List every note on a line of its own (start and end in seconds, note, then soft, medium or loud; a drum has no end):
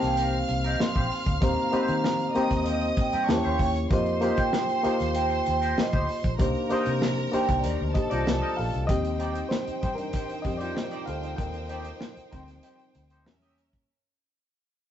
0.00 0.41 C2 medium
0.00 1.41 A#3 medium
0.00 1.41 C4 medium
0.00 1.42 D#4 medium
0.00 1.42 G4 medium
0.00 1.43 C5 medium
0.00 2.31 F5 medium
0.00 2.32 F6 medium
0.00 muted clean electric guitar stroke soft
0.00 snare soft
0.00 closed hi-hat medium
0.05 0.19 G5 loud
0.17 0.35 C4 medium
0.17 0.35 G4 medium
0.17 0.36 A#4 medium
0.17 0.67 F5 loud
0.17 closed hi-hat loud
0.48 0.75 C2 loud
0.48 muted clean electric guitar stroke soft
0.48 closed hi-hat medium
0.64 0.79 C4 soft
0.64 0.79 G4 medium
0.64 0.78 A#4 medium
0.64 0.73 D#5 medium
0.64 closed hi-hat medium
0.80 1.45 C6 loud
0.80 muted clean electric guitar stroke soft
0.80 muted fingered electric bass stroke medium
0.80 snare loud
0.95 1.09 A#1 medium
0.95 1.10 C4 medium
0.95 1.11 G4 medium
0.95 1.12 C5 medium
0.95 kick loud
0.95 closed hi-hat soft
1.11 muted clean electric guitar stroke soft
1.11 open hi-hat medium
1.26 1.40 D2 medium
1.26 muted clean electric guitar stroke soft
1.26 kick medium
1.26 closed hi-hat medium
1.41 1.55 D#2 loud
1.41 1.64 A#3 medium
1.41 1.64 C4 medium
1.41 1.64 D#4 medium
1.41 1.65 G4 medium
1.41 1.65 C5 medium
1.41 2.06 A#5 loud
1.41 kick loud
1.41 closed hi-hat medium
1.72 2.17 A#3 medium
1.72 2.17 C4 medium
1.72 1.93 C4 medium
1.72 2.18 D#4 medium
1.72 1.93 G4 medium
1.72 2.18 G4 medium
1.72 2.18 C5 medium
1.72 1.94 C5 medium
1.72 muted fingered electric bass stroke soft
1.72 closed hi-hat medium
1.88 2.27 D#3 loud
1.88 closed hi-hat medium
2.04 2.62 A#5 loud
2.04 muted clean electric guitar stroke soft
2.04 snare loud
2.20 closed hi-hat soft
2.35 3.25 A#3 medium
2.35 3.25 C4 medium
2.35 2.49 C4 medium
2.35 3.25 D#4 medium
2.35 2.50 G4 medium
2.35 3.25 G4 medium
2.35 2.50 A#4 medium
2.35 3.26 C5 medium
2.35 3.27 D#5 medium
2.35 3.27 D#6 loud
2.35 muted fingered electric bass stroke soft
2.35 closed hi-hat medium
2.51 2.90 D#2 medium
2.51 muted clean electric guitar stroke soft
2.51 kick medium
2.51 snare soft
2.51 closed hi-hat medium
2.61 2.67 F5 medium
2.66 2.84 C4 medium
2.66 2.85 G4 medium
2.66 2.85 A#4 medium
2.66 3.00 D#5 loud
2.66 closed hi-hat loud
2.82 closed hi-hat soft
2.97 muted fingered electric bass stroke soft
2.97 muted clean electric guitar stroke soft
2.97 kick loud
2.97 closed hi-hat medium
3.01 3.23 G5 loud
3.13 3.26 G2 medium
3.13 3.28 C4 soft
3.13 3.27 G4 medium
3.13 3.27 A#4 medium
3.13 closed hi-hat medium
3.25 3.78 A#3 medium
3.25 3.90 C#5 medium
3.25 3.33 A5 medium
3.25 3.90 C#6 loud
3.25 snare loud
3.29 3.42 E2 loud
3.29 3.79 C#4 medium
3.29 3.79 E4 medium
3.29 3.79 G4 medium
3.29 3.36 C5 medium
3.29 muted clean electric guitar stroke soft
3.35 3.83 C#5 medium
3.35 3.43 G5 medium
3.44 3.58 D#2 medium
3.44 3.59 C#4 medium
3.44 3.60 G4 medium
3.44 3.61 C5 medium
3.44 3.52 F5 medium
3.44 closed hi-hat soft
3.53 3.61 G5 medium
3.59 3.85 D#2 loud
3.59 muted clean electric guitar stroke soft
3.59 kick medium
3.59 open hi-hat medium
3.75 muted clean electric guitar stroke soft
3.75 closed hi-hat medium
3.90 4.29 F2 loud
3.90 4.13 A#3 medium
3.90 4.13 D#4 medium
3.90 4.14 F4 medium
3.90 4.14 G4 medium
3.90 6.36 C5 medium
3.90 4.14 C5 medium
3.90 4.40 D#5 loud
3.90 6.36 C6 medium
3.90 kick loud
3.90 closed hi-hat medium
4.06 closed hi-hat soft
4.21 4.66 A#3 medium
4.21 4.40 D#4 medium
4.21 4.67 D#4 medium
4.21 4.67 F4 medium
4.21 4.40 G4 medium
4.21 4.67 G4 medium
4.21 4.68 C5 medium
4.21 4.40 C5 medium
4.21 closed hi-hat medium
4.37 4.86 G5 loud
4.37 muted fingered electric bass stroke medium
4.37 kick medium
4.37 closed hi-hat medium
4.53 muted clean electric guitar stroke soft
4.53 snare loud
4.69 closed hi-hat soft
4.83 5.73 A#3 medium
4.83 5.74 D#4 medium
4.83 4.98 D#4 medium
4.83 5.74 F4 medium
4.83 4.98 G4 medium
4.83 5.74 G4 medium
4.83 4.98 A#4 medium
4.83 5.75 C5 medium
4.83 5.13 F5 loud
4.83 muted fingered electric bass stroke soft
4.83 closed hi-hat medium
4.99 5.39 D#2 medium
4.99 muted clean electric guitar stroke soft
4.99 snare soft
4.99 closed hi-hat medium
5.15 5.33 D#4 medium
5.15 5.33 G4 medium
5.15 5.33 A#4 medium
5.15 5.79 G5 loud
5.15 closed hi-hat loud
5.31 closed hi-hat soft
5.46 5.73 D#2 medium
5.46 muted clean electric guitar stroke soft
5.46 closed hi-hat medium
5.62 5.76 D#4 soft
5.62 5.76 G4 medium
5.62 5.76 A#4 medium
5.62 closed hi-hat medium
5.77 6.21 D#5 medium
5.77 muted clean electric guitar stroke soft
5.77 muted fingered electric bass stroke medium
5.77 snare loud
5.92 6.06 D2 medium
5.92 6.08 D#4 medium
5.92 6.08 G4 medium
5.92 6.10 C5 medium
5.92 kick medium
5.92 closed hi-hat soft
6.09 open hi-hat medium
6.24 6.37 A#1 medium
6.24 muted clean electric guitar stroke soft
6.24 kick medium
6.24 closed hi-hat medium
6.39 6.53 C2 loud
6.39 6.62 A#3 medium
6.39 6.62 D4 medium
6.39 6.62 D#4 medium
6.39 6.62 G4 medium
6.39 7.93 A#4 medium
6.39 6.63 C5 medium
6.39 6.98 F5 medium
6.39 7.93 A#5 medium
6.39 kick loud
6.39 closed hi-hat medium
6.55 closed hi-hat soft
6.70 7.15 A#3 medium
6.70 7.15 D4 medium
6.70 6.89 D#4 medium
6.70 7.16 D#4 medium
6.70 7.16 G4 medium
6.70 6.89 A#4 medium
6.70 7.16 C5 medium
6.70 6.89 D#5 medium
6.70 muted fingered electric bass stroke soft
6.70 closed hi-hat medium
6.86 7.25 C3 medium
6.86 closed hi-hat medium
7.02 muted clean electric guitar stroke soft
7.02 snare loud
7.18 closed hi-hat soft
7.32 8.22 A#3 medium
7.32 8.23 D4 medium
7.32 8.23 D#4 medium
7.32 7.47 D#4 medium
7.32 7.95 G4 medium
7.32 7.47 A#4 medium
7.32 8.23 C5 medium
7.32 7.48 D5 medium
7.32 7.59 G5 loud
7.32 muted fingered electric bass stroke soft
7.32 closed hi-hat medium
7.49 7.62 C2 medium
7.49 muted clean electric guitar stroke soft
7.49 kick medium
7.49 closed hi-hat medium
7.59 7.65 D5 medium
7.64 7.77 D#2 loud
7.64 7.82 D#4 medium
7.64 7.82 A#4 medium
7.64 8.54 C5 medium
7.64 7.83 D5 medium
7.64 closed hi-hat loud
7.81 7.93 D2 medium
7.94 8.10 G4 medium
7.94 8.87 A4 medium
7.94 8.11 D#5 medium
7.94 8.87 A5 medium
7.94 muted clean electric guitar stroke soft
7.94 kick medium
7.94 closed hi-hat medium
8.10 8.24 C2 medium
8.10 8.25 D#4 medium
8.10 8.55 F4 medium
8.10 8.25 A#4 soft
8.10 8.24 D5 medium
8.10 8.59 D5 loud
8.10 closed hi-hat medium
8.26 8.40 C2 loud
8.26 muted clean electric guitar stroke soft
8.26 snare loud
8.42 8.56 D#4 medium
8.42 8.57 A#4 medium
8.42 8.58 D#5 medium
8.57 8.71 A#1 medium
8.57 8.88 A4 medium
8.57 8.89 F5 medium
8.57 muted clean electric guitar stroke soft
8.57 open hi-hat medium
8.73 8.87 C2 medium
8.73 muted clean electric guitar stroke soft
8.73 closed hi-hat medium
8.87 9.41 D#2 loud
8.87 10.44 F3 medium
8.87 10.44 G3 soft
8.87 10.44 C4 medium
8.87 13.22 D#4 medium
8.87 9.48 G4 medium
8.87 13.22 C5 medium
8.87 9.52 D#5 loud
8.87 13.22 G5 medium
8.87 kick loud
8.87 closed hi-hat medium
9.05 closed hi-hat medium
9.19 9.38 D#4 medium
9.19 9.38 G4 medium
9.19 9.38 D5 medium
9.19 closed hi-hat medium
9.35 closed hi-hat medium
9.49 9.95 D#4 medium
9.49 9.93 C5 medium
9.49 muted clean electric guitar stroke soft
9.49 snare loud
9.68 muted fingered electric bass stroke medium
9.68 closed hi-hat medium
9.82 10.09 G2 medium
9.82 9.96 D#4 medium
9.82 9.96 G4 medium
9.82 9.96 C5 medium
9.82 kick medium
9.82 closed hi-hat medium
9.95 10.42 D4 medium
9.95 10.45 A#4 medium
9.95 muted clean electric guitar stroke soft
9.95 closed hi-hat medium
10.13 10.31 D#4 medium
10.13 10.31 G4 medium
10.13 10.32 C5 medium
10.13 kick medium
10.13 closed hi-hat loud
10.29 closed hi-hat soft
10.42 10.71 F2 medium
10.42 10.73 F3 soft
10.42 10.73 G3 soft
10.42 10.73 C4 soft
10.42 10.60 G4 medium
10.42 10.60 D#5 medium
10.42 muted clean electric guitar stroke soft
10.42 kick medium
10.42 closed hi-hat medium
10.58 10.75 D#4 soft
10.58 11.05 F4 medium
10.58 10.75 G4 soft
10.58 10.74 C5 soft
10.58 11.07 D5 loud
10.58 closed hi-hat medium
10.77 snare loud
10.91 11.06 D#4 medium
10.91 11.06 G4 medium
10.91 11.08 D5 medium
10.91 closed hi-hat soft
11.06 11.33 D2 loud
11.06 11.37 A4 medium
11.06 11.39 F5 medium
11.06 muted clean electric guitar stroke soft
11.06 closed hi-hat medium
11.22 muted clean electric guitar stroke soft
11.22 closed hi-hat soft
11.36 11.90 D#2 loud
11.36 13.23 A#4 medium
11.36 13.21 G5 loud
11.36 kick loud
11.36 closed hi-hat medium
11.54 closed hi-hat soft
11.69 11.87 D#4 medium
11.69 11.88 G4 medium
11.69 11.88 D5 medium
11.69 closed hi-hat medium
11.85 closed hi-hat medium
12.01 muted clean electric guitar stroke soft
12.01 snare loud
12.17 muted fingered electric bass stroke soft
12.17 closed hi-hat medium
12.31 12.59 D2 medium
12.31 12.74 F3 medium
12.31 12.74 G3 soft
12.31 12.75 C4 medium
12.31 12.46 D#4 medium
12.31 12.46 G4 medium
12.31 12.46 C5 medium
12.31 kick medium
12.31 closed hi-hat medium
12.48 muted clean electric guitar stroke soft
12.48 snare soft
12.48 closed hi-hat medium
12.63 12.81 D#4 medium
12.63 12.82 G4 medium
12.63 12.82 C5 medium
12.63 closed hi-hat loud
12.79 closed hi-hat soft
12.95 13.26 D2 medium
12.95 muted clean electric guitar stroke soft
12.95 closed hi-hat medium
13.10 13.25 D#4 soft
13.10 13.25 G4 soft
13.10 13.25 C5 medium
13.10 closed hi-hat medium
13.26 13.78 E2 loud
13.26 13.85 G3 medium
13.26 13.86 A#3 medium
13.26 13.88 C#4 medium
13.26 13.86 C#4 medium
13.26 13.88 A#4 medium
13.26 13.88 E5 medium
13.26 snare loud
13.42 13.57 E4 soft
13.42 13.58 G4 medium
13.42 13.59 D#5 medium
13.42 closed hi-hat soft
13.58 muted clean electric guitar stroke soft
13.58 closed hi-hat medium
13.73 muted clean electric guitar stroke soft
13.73 kick medium
13.73 closed hi-hat soft